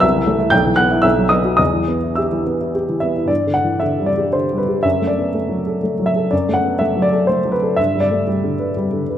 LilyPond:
<<
  \new Staff \with { instrumentName = "Grand piano" } { \time 3/4 \key e \minor \tempo 4 = 121 <e'' e'''>4 <g'' g'''>8 <fis'' fis'''>8 <e'' e'''>8 <dis'' dis'''>8 | <dis'' dis'''>4 <e'' e'''>4 r8 e''8 | \key g \major d''8 fis''8 e''8 d''8 c''8 b'8 | e''8 d''4. r8 e''8 |
d''8 fis''8 e''8 d''8 c''8 b'8 | e''8 d''4. r4 | }
  \new Staff \with { instrumentName = "Grand piano" } { \time 3/4 \key e \minor c,16 e16 a16 e'16 b,,16 e16 b16 e'16 b,,16 fis16 b16 fis'16 | e,16 e16 b16 e'16 g'16 e16 b16 e'16 g'16 e16 b16 e'16 | \key g \major \tuplet 3/2 { g,8 d8 e8 d8 g8 g'8 d8 g8 g'8 } | \tuplet 3/2 { fis,8 a8 b8 a8 fis8 a'8 a8 fis8 a'8 } |
\tuplet 3/2 { fis,8 a8 b8 a8 fis8 a'8 a8 fis8 a'8 } | \tuplet 3/2 { g,8 g8 a8 g8 d8 b'8 g8 d8 b'8 } | }
>>